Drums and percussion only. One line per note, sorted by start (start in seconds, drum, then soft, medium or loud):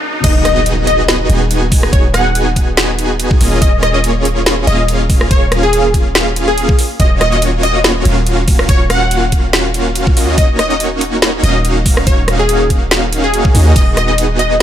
0.24 kick loud
0.24 closed hi-hat medium
0.24 crash loud
0.45 cross-stick medium
0.45 closed hi-hat medium
0.66 closed hi-hat medium
0.87 closed hi-hat medium
1.08 snare loud
1.08 closed hi-hat medium
1.30 closed hi-hat medium
1.51 closed hi-hat medium
1.72 kick loud
1.72 open hi-hat medium
1.83 cross-stick medium
1.93 kick loud
1.93 closed hi-hat medium
2.14 cross-stick medium
2.14 closed hi-hat medium
2.35 closed hi-hat medium
2.56 kick medium
2.56 closed hi-hat medium
2.77 snare loud
2.77 closed hi-hat medium
2.99 closed hi-hat medium
3.20 closed hi-hat medium
3.31 kick loud
3.41 open hi-hat medium
3.62 kick loud
3.62 closed hi-hat medium
3.83 cross-stick medium
3.83 closed hi-hat medium
4.04 closed hi-hat medium
4.25 closed hi-hat medium
4.46 snare loud
4.46 closed hi-hat medium
4.67 closed hi-hat medium
4.88 closed hi-hat medium
5.10 kick loud
5.10 open hi-hat medium
5.21 cross-stick medium
5.31 kick loud
5.31 closed hi-hat medium
5.52 cross-stick medium
5.52 closed hi-hat medium
5.73 closed hi-hat medium
5.94 kick medium
5.94 closed hi-hat medium
6.15 snare loud
6.15 closed hi-hat medium
6.36 closed hi-hat medium
6.58 closed hi-hat medium
6.69 kick loud
6.79 open hi-hat medium
7.00 kick loud
7.00 closed hi-hat medium
7.21 cross-stick medium
7.21 closed hi-hat medium
7.42 closed hi-hat medium
7.63 closed hi-hat medium
7.84 snare loud
7.84 closed hi-hat medium
8.05 closed hi-hat medium
8.27 closed hi-hat medium
8.48 kick loud
8.48 open hi-hat loud
8.59 cross-stick medium
8.69 kick loud
8.69 closed hi-hat medium
8.90 cross-stick medium
8.90 closed hi-hat medium
9.11 closed hi-hat medium
9.32 kick medium
9.32 closed hi-hat medium
9.53 snare loud
9.53 closed hi-hat medium
9.74 closed hi-hat medium
9.96 closed hi-hat medium
10.07 kick loud
10.17 open hi-hat loud
10.38 kick loud
10.38 closed hi-hat medium
10.59 cross-stick medium
10.59 closed hi-hat medium
10.80 closed hi-hat medium
11.01 closed hi-hat medium
11.22 snare loud
11.22 closed hi-hat medium
11.44 closed hi-hat medium
11.65 closed hi-hat medium
11.86 kick loud
11.86 open hi-hat loud
11.97 cross-stick medium
12.07 kick loud
12.07 closed hi-hat medium
12.28 cross-stick medium
12.28 closed hi-hat medium
12.49 closed hi-hat medium
12.70 kick medium
12.70 closed hi-hat medium
12.91 snare loud
12.91 closed hi-hat medium
13.13 closed hi-hat medium
13.34 closed hi-hat medium
13.45 kick loud
13.55 open hi-hat loud
13.76 kick loud
13.76 closed hi-hat medium
13.76 crash soft
13.97 cross-stick medium
13.97 closed hi-hat medium
14.18 closed hi-hat medium
14.39 closed hi-hat medium